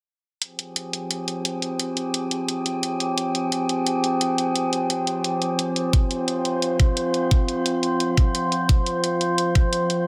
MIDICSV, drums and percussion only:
0, 0, Header, 1, 2, 480
1, 0, Start_track
1, 0, Key_signature, -4, "minor"
1, 0, Tempo, 344828
1, 579, Time_signature, 4, 2, 24, 8
1, 14019, End_track
2, 0, Start_track
2, 0, Title_t, "Drums"
2, 579, Note_on_c, 9, 42, 94
2, 719, Note_off_c, 9, 42, 0
2, 819, Note_on_c, 9, 42, 65
2, 959, Note_off_c, 9, 42, 0
2, 1059, Note_on_c, 9, 42, 91
2, 1199, Note_off_c, 9, 42, 0
2, 1300, Note_on_c, 9, 42, 71
2, 1439, Note_off_c, 9, 42, 0
2, 1540, Note_on_c, 9, 42, 93
2, 1679, Note_off_c, 9, 42, 0
2, 1779, Note_on_c, 9, 42, 67
2, 1918, Note_off_c, 9, 42, 0
2, 2019, Note_on_c, 9, 42, 92
2, 2158, Note_off_c, 9, 42, 0
2, 2259, Note_on_c, 9, 42, 67
2, 2398, Note_off_c, 9, 42, 0
2, 2499, Note_on_c, 9, 42, 91
2, 2638, Note_off_c, 9, 42, 0
2, 2739, Note_on_c, 9, 42, 68
2, 2879, Note_off_c, 9, 42, 0
2, 2979, Note_on_c, 9, 42, 95
2, 3119, Note_off_c, 9, 42, 0
2, 3219, Note_on_c, 9, 42, 69
2, 3358, Note_off_c, 9, 42, 0
2, 3459, Note_on_c, 9, 42, 86
2, 3598, Note_off_c, 9, 42, 0
2, 3700, Note_on_c, 9, 42, 67
2, 3839, Note_off_c, 9, 42, 0
2, 3940, Note_on_c, 9, 42, 94
2, 4080, Note_off_c, 9, 42, 0
2, 4180, Note_on_c, 9, 42, 67
2, 4320, Note_off_c, 9, 42, 0
2, 4421, Note_on_c, 9, 42, 91
2, 4560, Note_off_c, 9, 42, 0
2, 4662, Note_on_c, 9, 42, 65
2, 4801, Note_off_c, 9, 42, 0
2, 4901, Note_on_c, 9, 42, 96
2, 5040, Note_off_c, 9, 42, 0
2, 5141, Note_on_c, 9, 42, 67
2, 5280, Note_off_c, 9, 42, 0
2, 5380, Note_on_c, 9, 42, 89
2, 5520, Note_off_c, 9, 42, 0
2, 5621, Note_on_c, 9, 42, 64
2, 5760, Note_off_c, 9, 42, 0
2, 5861, Note_on_c, 9, 42, 96
2, 6000, Note_off_c, 9, 42, 0
2, 6101, Note_on_c, 9, 42, 67
2, 6240, Note_off_c, 9, 42, 0
2, 6341, Note_on_c, 9, 42, 86
2, 6480, Note_off_c, 9, 42, 0
2, 6581, Note_on_c, 9, 42, 62
2, 6720, Note_off_c, 9, 42, 0
2, 6821, Note_on_c, 9, 42, 90
2, 6960, Note_off_c, 9, 42, 0
2, 7060, Note_on_c, 9, 42, 65
2, 7200, Note_off_c, 9, 42, 0
2, 7300, Note_on_c, 9, 42, 80
2, 7439, Note_off_c, 9, 42, 0
2, 7540, Note_on_c, 9, 42, 62
2, 7679, Note_off_c, 9, 42, 0
2, 7780, Note_on_c, 9, 42, 86
2, 7919, Note_off_c, 9, 42, 0
2, 8020, Note_on_c, 9, 42, 61
2, 8159, Note_off_c, 9, 42, 0
2, 8259, Note_on_c, 9, 36, 116
2, 8261, Note_on_c, 9, 42, 86
2, 8398, Note_off_c, 9, 36, 0
2, 8400, Note_off_c, 9, 42, 0
2, 8501, Note_on_c, 9, 42, 60
2, 8640, Note_off_c, 9, 42, 0
2, 8740, Note_on_c, 9, 42, 88
2, 8879, Note_off_c, 9, 42, 0
2, 8980, Note_on_c, 9, 42, 61
2, 9119, Note_off_c, 9, 42, 0
2, 9219, Note_on_c, 9, 42, 81
2, 9359, Note_off_c, 9, 42, 0
2, 9459, Note_on_c, 9, 36, 98
2, 9460, Note_on_c, 9, 42, 64
2, 9598, Note_off_c, 9, 36, 0
2, 9599, Note_off_c, 9, 42, 0
2, 9700, Note_on_c, 9, 42, 88
2, 9839, Note_off_c, 9, 42, 0
2, 9940, Note_on_c, 9, 42, 61
2, 10079, Note_off_c, 9, 42, 0
2, 10179, Note_on_c, 9, 36, 117
2, 10179, Note_on_c, 9, 42, 82
2, 10318, Note_off_c, 9, 36, 0
2, 10318, Note_off_c, 9, 42, 0
2, 10419, Note_on_c, 9, 42, 60
2, 10558, Note_off_c, 9, 42, 0
2, 10659, Note_on_c, 9, 42, 89
2, 10798, Note_off_c, 9, 42, 0
2, 10899, Note_on_c, 9, 42, 63
2, 11039, Note_off_c, 9, 42, 0
2, 11139, Note_on_c, 9, 42, 77
2, 11279, Note_off_c, 9, 42, 0
2, 11379, Note_on_c, 9, 36, 99
2, 11379, Note_on_c, 9, 42, 63
2, 11518, Note_off_c, 9, 36, 0
2, 11519, Note_off_c, 9, 42, 0
2, 11619, Note_on_c, 9, 42, 88
2, 11759, Note_off_c, 9, 42, 0
2, 11860, Note_on_c, 9, 42, 59
2, 11999, Note_off_c, 9, 42, 0
2, 12098, Note_on_c, 9, 36, 119
2, 12100, Note_on_c, 9, 42, 90
2, 12237, Note_off_c, 9, 36, 0
2, 12239, Note_off_c, 9, 42, 0
2, 12339, Note_on_c, 9, 42, 61
2, 12478, Note_off_c, 9, 42, 0
2, 12579, Note_on_c, 9, 42, 92
2, 12718, Note_off_c, 9, 42, 0
2, 12819, Note_on_c, 9, 42, 63
2, 12958, Note_off_c, 9, 42, 0
2, 13059, Note_on_c, 9, 42, 86
2, 13198, Note_off_c, 9, 42, 0
2, 13298, Note_on_c, 9, 36, 93
2, 13299, Note_on_c, 9, 42, 63
2, 13437, Note_off_c, 9, 36, 0
2, 13439, Note_off_c, 9, 42, 0
2, 13539, Note_on_c, 9, 42, 88
2, 13678, Note_off_c, 9, 42, 0
2, 13780, Note_on_c, 9, 42, 63
2, 13919, Note_off_c, 9, 42, 0
2, 14019, End_track
0, 0, End_of_file